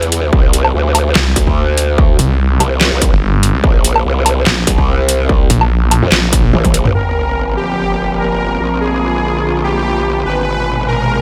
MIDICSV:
0, 0, Header, 1, 9, 480
1, 0, Start_track
1, 0, Tempo, 413793
1, 379, Time_signature, 4, 2, 24, 8
1, 13009, End_track
2, 0, Start_track
2, 0, Title_t, "Ambient pad"
2, 0, Program_c, 0, 92
2, 8056, Note_on_c, 0, 60, 81
2, 8220, Note_on_c, 0, 74, 74
2, 8450, Note_on_c, 0, 65, 73
2, 8457, Note_on_c, 0, 70, 71
2, 11898, Note_off_c, 0, 60, 0
2, 11898, Note_off_c, 0, 74, 0
2, 11899, Note_off_c, 0, 70, 0
2, 11900, Note_on_c, 0, 56, 73
2, 12304, Note_on_c, 0, 82, 63
2, 12515, Note_off_c, 0, 65, 0
2, 12539, Note_on_c, 0, 75, 77
2, 13009, Note_off_c, 0, 56, 0
2, 13009, Note_off_c, 0, 75, 0
2, 13009, Note_off_c, 0, 82, 0
2, 13009, End_track
3, 0, Start_track
3, 0, Title_t, "Supersaw synth"
3, 0, Program_c, 1, 81
3, 8059, Note_on_c, 1, 70, 96
3, 8691, Note_off_c, 1, 70, 0
3, 8779, Note_on_c, 1, 67, 92
3, 9411, Note_off_c, 1, 67, 0
3, 9500, Note_on_c, 1, 70, 98
3, 10131, Note_off_c, 1, 70, 0
3, 10220, Note_on_c, 1, 68, 91
3, 11092, Note_off_c, 1, 68, 0
3, 11180, Note_on_c, 1, 67, 92
3, 11811, Note_off_c, 1, 67, 0
3, 11900, Note_on_c, 1, 71, 98
3, 12531, Note_off_c, 1, 71, 0
3, 12619, Note_on_c, 1, 70, 91
3, 13009, Note_off_c, 1, 70, 0
3, 13009, End_track
4, 0, Start_track
4, 0, Title_t, "Ambient pad"
4, 0, Program_c, 2, 92
4, 8060, Note_on_c, 2, 53, 76
4, 8060, Note_on_c, 2, 58, 67
4, 8060, Note_on_c, 2, 67, 82
4, 9960, Note_off_c, 2, 67, 0
4, 9961, Note_off_c, 2, 53, 0
4, 9979, Note_on_c, 2, 50, 76
4, 9980, Note_on_c, 2, 65, 84
4, 11861, Note_off_c, 2, 58, 0
4, 11880, Note_off_c, 2, 50, 0
4, 11880, Note_off_c, 2, 65, 0
4, 11899, Note_on_c, 2, 46, 69
4, 11899, Note_on_c, 2, 68, 81
4, 11900, Note_on_c, 2, 47, 76
4, 13009, Note_off_c, 2, 46, 0
4, 13009, Note_off_c, 2, 47, 0
4, 13009, Note_off_c, 2, 68, 0
4, 13009, End_track
5, 0, Start_track
5, 0, Title_t, "Wobble bass"
5, 0, Program_c, 3, 39
5, 0, Note_on_c, 3, 40, 98
5, 362, Note_off_c, 3, 40, 0
5, 379, Note_on_c, 3, 36, 98
5, 842, Note_off_c, 3, 36, 0
5, 860, Note_on_c, 3, 38, 103
5, 1322, Note_off_c, 3, 38, 0
5, 1580, Note_on_c, 3, 38, 98
5, 2522, Note_off_c, 3, 38, 0
5, 3020, Note_on_c, 3, 36, 99
5, 3369, Note_off_c, 3, 36, 0
5, 3389, Note_on_c, 3, 36, 97
5, 3608, Note_off_c, 3, 36, 0
5, 4219, Note_on_c, 3, 34, 100
5, 4682, Note_off_c, 3, 34, 0
5, 4699, Note_on_c, 3, 36, 101
5, 5162, Note_off_c, 3, 36, 0
5, 5419, Note_on_c, 3, 36, 99
5, 6362, Note_off_c, 3, 36, 0
5, 6989, Note_on_c, 3, 41, 101
5, 7082, Note_off_c, 3, 41, 0
5, 7580, Note_on_c, 3, 34, 101
5, 8042, Note_off_c, 3, 34, 0
5, 8060, Note_on_c, 3, 31, 82
5, 9958, Note_off_c, 3, 31, 0
5, 9979, Note_on_c, 3, 34, 85
5, 11877, Note_off_c, 3, 34, 0
5, 11900, Note_on_c, 3, 32, 84
5, 13009, Note_off_c, 3, 32, 0
5, 13009, End_track
6, 0, Start_track
6, 0, Title_t, "Detuned saw bass"
6, 0, Program_c, 4, 39
6, 1339, Note_on_c, 4, 36, 101
6, 1562, Note_off_c, 4, 36, 0
6, 2539, Note_on_c, 4, 36, 99
6, 3002, Note_off_c, 4, 36, 0
6, 3629, Note_on_c, 4, 31, 99
6, 4088, Note_off_c, 4, 31, 0
6, 4109, Note_on_c, 4, 36, 101
6, 4202, Note_off_c, 4, 36, 0
6, 5179, Note_on_c, 4, 34, 96
6, 5402, Note_off_c, 4, 34, 0
6, 6380, Note_on_c, 4, 34, 97
6, 6842, Note_off_c, 4, 34, 0
6, 6860, Note_on_c, 4, 34, 101
6, 6969, Note_off_c, 4, 34, 0
6, 7100, Note_on_c, 4, 34, 100
6, 7562, Note_off_c, 4, 34, 0
6, 13009, End_track
7, 0, Start_track
7, 0, Title_t, "Riser"
7, 0, Program_c, 5, 103
7, 11900, Note_on_c, 5, 60, 65
7, 13009, Note_off_c, 5, 60, 0
7, 13009, End_track
8, 0, Start_track
8, 0, Title_t, "Sub drop"
8, 0, Program_c, 6, 103
8, 8060, Note_on_c, 6, 60, 60
8, 9980, Note_off_c, 6, 60, 0
8, 13009, End_track
9, 0, Start_track
9, 0, Title_t, "Drums"
9, 29, Note_on_c, 9, 42, 35
9, 139, Note_off_c, 9, 42, 0
9, 139, Note_on_c, 9, 42, 80
9, 255, Note_off_c, 9, 42, 0
9, 379, Note_on_c, 9, 36, 125
9, 495, Note_off_c, 9, 36, 0
9, 619, Note_on_c, 9, 42, 79
9, 735, Note_off_c, 9, 42, 0
9, 749, Note_on_c, 9, 77, 61
9, 865, Note_off_c, 9, 77, 0
9, 1099, Note_on_c, 9, 42, 77
9, 1099, Note_on_c, 9, 77, 54
9, 1215, Note_off_c, 9, 42, 0
9, 1215, Note_off_c, 9, 77, 0
9, 1339, Note_on_c, 9, 38, 114
9, 1339, Note_on_c, 9, 39, 85
9, 1455, Note_off_c, 9, 38, 0
9, 1455, Note_off_c, 9, 39, 0
9, 1579, Note_on_c, 9, 36, 111
9, 1579, Note_on_c, 9, 42, 80
9, 1695, Note_off_c, 9, 36, 0
9, 1695, Note_off_c, 9, 42, 0
9, 1709, Note_on_c, 9, 36, 60
9, 1825, Note_off_c, 9, 36, 0
9, 2059, Note_on_c, 9, 42, 80
9, 2175, Note_off_c, 9, 42, 0
9, 2300, Note_on_c, 9, 36, 118
9, 2416, Note_off_c, 9, 36, 0
9, 2539, Note_on_c, 9, 42, 81
9, 2655, Note_off_c, 9, 42, 0
9, 3019, Note_on_c, 9, 42, 79
9, 3019, Note_on_c, 9, 77, 53
9, 3135, Note_off_c, 9, 42, 0
9, 3135, Note_off_c, 9, 77, 0
9, 3259, Note_on_c, 9, 38, 112
9, 3259, Note_on_c, 9, 39, 85
9, 3375, Note_off_c, 9, 38, 0
9, 3375, Note_off_c, 9, 39, 0
9, 3499, Note_on_c, 9, 36, 106
9, 3499, Note_on_c, 9, 42, 80
9, 3615, Note_off_c, 9, 36, 0
9, 3615, Note_off_c, 9, 42, 0
9, 3979, Note_on_c, 9, 42, 81
9, 4095, Note_off_c, 9, 42, 0
9, 4219, Note_on_c, 9, 36, 114
9, 4335, Note_off_c, 9, 36, 0
9, 4459, Note_on_c, 9, 42, 86
9, 4575, Note_off_c, 9, 42, 0
9, 4589, Note_on_c, 9, 77, 66
9, 4705, Note_off_c, 9, 77, 0
9, 4940, Note_on_c, 9, 42, 82
9, 4940, Note_on_c, 9, 77, 56
9, 5056, Note_off_c, 9, 42, 0
9, 5056, Note_off_c, 9, 77, 0
9, 5179, Note_on_c, 9, 38, 109
9, 5179, Note_on_c, 9, 39, 86
9, 5295, Note_off_c, 9, 38, 0
9, 5295, Note_off_c, 9, 39, 0
9, 5419, Note_on_c, 9, 42, 87
9, 5420, Note_on_c, 9, 36, 103
9, 5535, Note_off_c, 9, 42, 0
9, 5536, Note_off_c, 9, 36, 0
9, 5549, Note_on_c, 9, 36, 59
9, 5665, Note_off_c, 9, 36, 0
9, 5899, Note_on_c, 9, 42, 84
9, 6015, Note_off_c, 9, 42, 0
9, 6139, Note_on_c, 9, 36, 114
9, 6255, Note_off_c, 9, 36, 0
9, 6379, Note_on_c, 9, 42, 82
9, 6495, Note_off_c, 9, 42, 0
9, 6509, Note_on_c, 9, 77, 65
9, 6625, Note_off_c, 9, 77, 0
9, 6859, Note_on_c, 9, 42, 84
9, 6859, Note_on_c, 9, 77, 57
9, 6975, Note_off_c, 9, 42, 0
9, 6975, Note_off_c, 9, 77, 0
9, 7099, Note_on_c, 9, 38, 113
9, 7099, Note_on_c, 9, 39, 90
9, 7215, Note_off_c, 9, 38, 0
9, 7215, Note_off_c, 9, 39, 0
9, 7339, Note_on_c, 9, 36, 99
9, 7339, Note_on_c, 9, 42, 86
9, 7455, Note_off_c, 9, 36, 0
9, 7455, Note_off_c, 9, 42, 0
9, 7579, Note_on_c, 9, 48, 62
9, 7695, Note_off_c, 9, 48, 0
9, 7709, Note_on_c, 9, 36, 61
9, 7709, Note_on_c, 9, 42, 41
9, 7709, Note_on_c, 9, 48, 62
9, 7819, Note_off_c, 9, 42, 0
9, 7819, Note_on_c, 9, 42, 89
9, 7825, Note_off_c, 9, 36, 0
9, 7825, Note_off_c, 9, 48, 0
9, 7935, Note_off_c, 9, 42, 0
9, 7949, Note_on_c, 9, 45, 87
9, 8065, Note_off_c, 9, 45, 0
9, 13009, End_track
0, 0, End_of_file